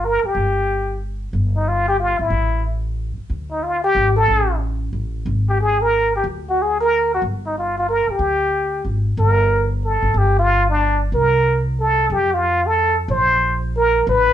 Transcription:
Already playing: upright bass G1
0.05 muted trumpet A#4
0.23 muted trumpet G4, muted upright bass stroke
0.35 upright bass G1
1.33 upright bass G1
1.56 muted trumpet D#4
1.68 muted trumpet F4
1.88 muted trumpet G4
2.00 muted trumpet F4
2.19 upright bass G#1, muted trumpet E4
2.30 upright bass A1
3.18 muted upright bass stroke
3.30 upright bass D2
3.51 muted trumpet D#4
3.63 muted trumpet F4
3.84 muted trumpet G4
3.95 upright bass G#1
4.16 muted trumpet A4
4.28 upright bass A1
4.93 upright bass A1
5.26 upright bass G#1
5.49 muted trumpet G4
5.60 muted trumpet G#4
5.82 muted trumpet A#4
6.16 muted trumpet G4
6.24 upright bass D2
6.49 muted trumpet F#4
6.62 muted trumpet G#4
6.81 muted trumpet A#4
7.14 muted trumpet F#4
7.22 upright bass G1
7.46 muted trumpet D#4
7.58 muted trumpet F4
7.78 muted trumpet F4
7.89 muted trumpet A#4
8.07 muted trumpet G4, muted upright bass stroke
8.19 upright bass D2
8.85 upright bass G#1
9.17 upright bass G1, muted trumpet A#4
9.84 muted trumpet A4
10.02 upright bass G#1
10.14 upright bass G1
10.18 muted trumpet G4
10.39 muted trumpet F4
10.70 muted trumpet D4
11.12 upright bass C2, muted trumpet A#4
11.80 muted trumpet A4
12.10 upright bass F2, muted trumpet G4
12.34 muted trumpet F4
12.67 muted trumpet A4
13.08 upright bass A#1, muted trumpet C5
13.77 muted trumpet A#4
14.07 upright bass A1, muted trumpet B4

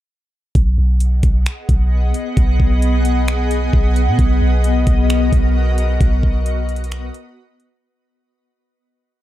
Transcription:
0.55 808-style bass B1, ambient pad B3 G#4 D#5 F#5, kick, closed hi-hat
0.78 808-style bass B1
1.00 closed hi-hat
1.23 808-style bass B1, kick, closed hi-hat
1.46 finger snap, closed hi-hat
1.69 808-style bass B1, kick, closed hi-hat
2.14 closed hi-hat
2.37 808-style bass B1, kick, closed hi-hat
2.60 808-style bass B1, kick
2.82 closed hi-hat
3.05 closed hi-hat
3.28 finger snap, closed hi-hat
3.51 closed hi-hat
3.73 808-style bass B1, kick
3.96 closed hi-hat
4.07 808-style bass B2
4.19 808-style bass B1, ambient pad F#4 A#4, kick, closed hi-hat
4.41 808-style bass B1
4.64 closed hi-hat
4.87 808-style bass B1, kick, closed hi-hat
5.10 finger snap, closed hi-hat
5.33 808-style bass B1, kick, closed hi-hat
5.78 closed hi-hat
6.01 808-style bass B1, ambient pad B4, kick, closed hi-hat
6.23 808-style bass B1, kick
6.46 closed hi-hat
6.69 closed hi-hat
6.76 closed hi-hat
6.84 closed hi-hat
6.92 finger snap, closed hi-hat
7.14 closed hi-hat
7.60 closed hi-hat

